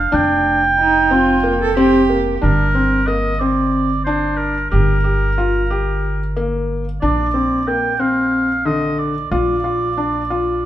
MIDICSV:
0, 0, Header, 1, 5, 480
1, 0, Start_track
1, 0, Key_signature, -2, "minor"
1, 0, Tempo, 656455
1, 87, Time_signature, 7, 3, 24, 8
1, 7791, End_track
2, 0, Start_track
2, 0, Title_t, "Oboe"
2, 0, Program_c, 0, 68
2, 0, Note_on_c, 0, 77, 84
2, 106, Note_on_c, 0, 79, 101
2, 117, Note_off_c, 0, 77, 0
2, 1536, Note_off_c, 0, 79, 0
2, 1775, Note_on_c, 0, 70, 77
2, 2242, Note_on_c, 0, 75, 81
2, 2253, Note_off_c, 0, 70, 0
2, 2482, Note_on_c, 0, 74, 74
2, 2493, Note_off_c, 0, 75, 0
2, 2952, Note_off_c, 0, 74, 0
2, 2957, Note_on_c, 0, 72, 74
2, 3194, Note_on_c, 0, 70, 68
2, 3204, Note_off_c, 0, 72, 0
2, 3432, Note_off_c, 0, 70, 0
2, 3436, Note_on_c, 0, 70, 72
2, 4854, Note_off_c, 0, 70, 0
2, 5129, Note_on_c, 0, 74, 85
2, 5613, Note_on_c, 0, 79, 80
2, 5624, Note_off_c, 0, 74, 0
2, 5851, Note_on_c, 0, 77, 84
2, 5862, Note_off_c, 0, 79, 0
2, 6330, Note_on_c, 0, 75, 74
2, 6341, Note_off_c, 0, 77, 0
2, 6574, Note_on_c, 0, 74, 63
2, 6585, Note_off_c, 0, 75, 0
2, 6807, Note_off_c, 0, 74, 0
2, 6811, Note_on_c, 0, 74, 74
2, 7791, Note_off_c, 0, 74, 0
2, 7791, End_track
3, 0, Start_track
3, 0, Title_t, "Cello"
3, 0, Program_c, 1, 42
3, 573, Note_on_c, 1, 63, 72
3, 822, Note_on_c, 1, 65, 79
3, 833, Note_off_c, 1, 63, 0
3, 1175, Note_off_c, 1, 65, 0
3, 1183, Note_on_c, 1, 69, 86
3, 1287, Note_off_c, 1, 69, 0
3, 1300, Note_on_c, 1, 67, 84
3, 1744, Note_off_c, 1, 67, 0
3, 7791, End_track
4, 0, Start_track
4, 0, Title_t, "Felt piano"
4, 0, Program_c, 2, 0
4, 87, Note_on_c, 2, 62, 87
4, 434, Note_off_c, 2, 62, 0
4, 810, Note_on_c, 2, 60, 67
4, 983, Note_off_c, 2, 60, 0
4, 1049, Note_on_c, 2, 58, 67
4, 1222, Note_off_c, 2, 58, 0
4, 1293, Note_on_c, 2, 60, 88
4, 1464, Note_off_c, 2, 60, 0
4, 1531, Note_on_c, 2, 58, 64
4, 1703, Note_off_c, 2, 58, 0
4, 1765, Note_on_c, 2, 62, 71
4, 1939, Note_off_c, 2, 62, 0
4, 2008, Note_on_c, 2, 60, 57
4, 2181, Note_off_c, 2, 60, 0
4, 2249, Note_on_c, 2, 58, 61
4, 2422, Note_off_c, 2, 58, 0
4, 2492, Note_on_c, 2, 60, 60
4, 2837, Note_off_c, 2, 60, 0
4, 2973, Note_on_c, 2, 62, 75
4, 3318, Note_off_c, 2, 62, 0
4, 3448, Note_on_c, 2, 67, 70
4, 3621, Note_off_c, 2, 67, 0
4, 3686, Note_on_c, 2, 67, 57
4, 3860, Note_off_c, 2, 67, 0
4, 3933, Note_on_c, 2, 65, 60
4, 4105, Note_off_c, 2, 65, 0
4, 4172, Note_on_c, 2, 67, 69
4, 4518, Note_off_c, 2, 67, 0
4, 4654, Note_on_c, 2, 58, 70
4, 4999, Note_off_c, 2, 58, 0
4, 5134, Note_on_c, 2, 62, 76
4, 5306, Note_off_c, 2, 62, 0
4, 5366, Note_on_c, 2, 60, 56
4, 5541, Note_off_c, 2, 60, 0
4, 5612, Note_on_c, 2, 58, 62
4, 5785, Note_off_c, 2, 58, 0
4, 5846, Note_on_c, 2, 60, 60
4, 6194, Note_off_c, 2, 60, 0
4, 6327, Note_on_c, 2, 50, 72
4, 6675, Note_off_c, 2, 50, 0
4, 6811, Note_on_c, 2, 65, 71
4, 6984, Note_off_c, 2, 65, 0
4, 7049, Note_on_c, 2, 65, 60
4, 7222, Note_off_c, 2, 65, 0
4, 7293, Note_on_c, 2, 62, 63
4, 7465, Note_off_c, 2, 62, 0
4, 7534, Note_on_c, 2, 65, 54
4, 7791, Note_off_c, 2, 65, 0
4, 7791, End_track
5, 0, Start_track
5, 0, Title_t, "Upright bass"
5, 0, Program_c, 3, 32
5, 98, Note_on_c, 3, 29, 77
5, 1743, Note_off_c, 3, 29, 0
5, 1776, Note_on_c, 3, 31, 76
5, 3423, Note_off_c, 3, 31, 0
5, 3458, Note_on_c, 3, 31, 74
5, 5105, Note_off_c, 3, 31, 0
5, 5137, Note_on_c, 3, 34, 74
5, 6784, Note_off_c, 3, 34, 0
5, 6810, Note_on_c, 3, 34, 72
5, 7791, Note_off_c, 3, 34, 0
5, 7791, End_track
0, 0, End_of_file